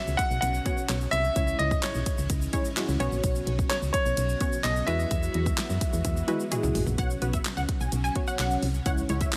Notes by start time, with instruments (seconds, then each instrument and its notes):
Already playing: string machine B2 C#3 F#3 C#4 F#4, analog polysynth B3 C#4 F#4 C#5, grand piano E5
0.07 fm bass C#2, shaker
0.17 grand piano F#5, kick, closed hi-hat, shaker
0.31 fm bass B1, shaker
0.41 fm bass B1, grand piano F#5, closed hi-hat, shaker
0.54 shaker
0.65 analog polysynth B3 C#4 F#4 C#5, kick, closed hi-hat, shaker
0.77 shaker
0.89 fm bass B1, analog polysynth B3 C#4 F#4 C#5, snare, clap, closed hi-hat, shaker
1.01 shaker
1.11 fm bass C2, grand piano E5, closed hi-hat, shaker
1.24 shaker
1.35 fm bass C#2, string machine G#2 E3 E4, analog polysynth G#3 C#4 E4 C#5, kick, closed hi-hat, shaker
1.48 shaker
1.59 fm bass C#2, grand piano D#5, closed hi-hat
1.71 kick, shaker
1.82 grand piano C#5, snare, clap, closed hi-hat, shaker
1.94 fm bass B1, shaker
2.06 kick, closed hi-hat, shaker
2.18 fm bass C#2, shaker
2.30 fm bass C#2, kick, closed hi-hat, shaker
2.42 shaker
2.53 analog polysynth G#3 C#4 E4 C#5, kick, closed hi-hat, shaker
2.65 shaker
2.76 analog polysynth G#3 C#4 E4 F#4, snare, clap, closed hi-hat, shaker
2.88 fm bass C#2, shaker
3.00 fm bass B1, string machine B2 F#3 F#4, analog polysynth B3 C#4 F#4 C#5, closed hi-hat, shaker
3.12 fm bass A#1, shaker
3.24 fm bass B1, kick, closed hi-hat, shaker
3.35 shaker
3.47 fm bass B1, closed hi-hat
3.59 kick, shaker
3.69 grand piano C#5, snare, clap, closed hi-hat, shaker
3.82 fm bass C#2, shaker
3.93 grand piano C#5, kick, closed hi-hat, shaker
4.06 fm bass B1, shaker
4.17 fm bass B1, closed hi-hat, shaker
4.29 shaker
4.41 analog polysynth B3 C#4 F#4 C#5, kick, closed hi-hat, shaker
4.53 shaker
4.63 fm bass B1, analog polysynth B3 C#4 F#4 A4, grand piano D#5, snare, clap, closed hi-hat, shaker
4.76 shaker
4.87 fm bass E2, string machine E3 G#3 B3, analog polysynth G#3 E4 F#4 B4, grand piano E5, closed hi-hat, shaker
4.99 shaker
5.11 fm bass E2, kick, closed hi-hat, shaker
5.23 shaker
5.34 fm bass E2, closed hi-hat
5.46 kick, shaker
5.58 snare, clap, closed hi-hat, shaker
5.70 fm bass F#2, shaker
5.81 kick, closed hi-hat, shaker
5.93 fm bass E2, shaker
6.05 fm bass E2, kick, closed hi-hat, high tom, shaker
6.17 shaker
6.28 analog polysynth G#3 E4 F#4 B4, closed hi-hat, mid tom, shaker
6.40 shaker
6.51 analog polysynth G#3 E4 F#4 G#4, closed hi-hat, mid tom, shaker
6.63 fm bass C#2, mid tom, shaker
6.75 fm bass A1, floor tom, open hi-hat, shaker
6.87 fm bass A#1, floor tom, shaker
6.98 fm bass B1, string machine B2 C#3 F#3 C#4 F#4, analog polysynth B3 F#4 C#5, synth pluck F#5, kick, closed hi-hat, shaker
7.10 shaker
7.22 fm bass B1, analog polysynth B3 F#4 B4, closed hi-hat, shaker
7.33 synth pluck E5, kick, closed hi-hat, shaker
7.45 snare, clap, closed hi-hat, shaker
7.57 fm bass C#2, synth pluck F#5, shaker
7.69 kick, closed hi-hat
7.81 fm bass B1, synth pluck G#5, shaker
7.92 fm bass B1, closed hi-hat, shaker
8.04 synth pluck G#5, shaker
8.15 analog polysynth B3 F#4 C#5, kick, closed hi-hat
8.27 synth pluck F#5, shaker
8.39 fm bass B1, synth pluck F#5, snare, clap, closed hi-hat, shaker
8.51 shaker
8.63 fm bass C2, open hi-hat
8.74 shaker
8.86 fm bass C#2, string machine G#2 E3 E4, analog polysynth G#3 E4 C#5, synth pluck F#5, kick, closed hi-hat, shaker
8.98 shaker
9.09 fm bass C#2, analog polysynth G#3 E4 C#5, closed hi-hat, shaker
9.21 synth pluck E5, kick, closed hi-hat, shaker
9.32 snare, clap, closed hi-hat, shaker